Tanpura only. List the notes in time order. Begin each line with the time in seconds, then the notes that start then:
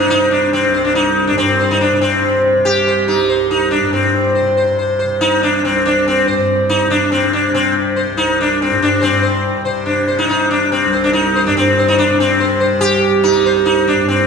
Already playing: C2 G2 C3
0.07 C3
0.69 C2
1.30 G2
1.93 C3
2.55 C3
3.19 C2
3.81 G2
4.42 C3
5.04 C3
5.66 C2
6.28 G2
6.88 C3
7.50 C3
8.12 C2
8.71 G2
9.01 G2
9.64 C3
10.26 C3
10.86 C2
11.48 G2
12.10 C3
12.72 C3
13.32 C2
13.94 G2